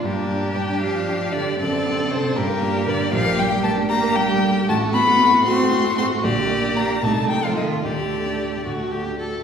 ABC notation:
X:1
M:6/8
L:1/16
Q:3/8=77
K:Gm
V:1 name="Violin"
B4 g2 f4 d2 | d4 c2 B4 d2 | f2 g2 a2 b2 g4 | a2 =b4 c'4 c'2 |
d4 b2 a2 g f e2 | d6 z6 |]
V:2 name="Violin"
G12 | A6 G6 | G6 G6 | ^F6 F6 |
G6 E3 F3 | G6 ^F2 G2 A2 |]
V:3 name="Grand piano"
G,, d D G d D G d D G A G | ^F,, c D A c D G,, B D G B D | B,,, B D G B D G B D G A G | A,,, ^F C F C A,, F C A,, F G F |
B,,, G B, D G B, C,,2 A, E A A, | D,, G A, D G A, D,, ^F A, D F A, |]
V:4 name="Viola"
D12 | C6 B,6 | B,6 B,6 | A,6 A,6 |
B,6 A,6 | A,6 A,4 z2 |]
V:5 name="Cello" clef=bass
B,,4 G,2 F,4 D,2 | D,4 C,2 B,,4 D,2 | F,2 G,2 A,2 B,2 G,4 | A,2 =B,4 C4 C2 |
D,4 B,2 A,2 G, F, E,2 | D,6 z6 |]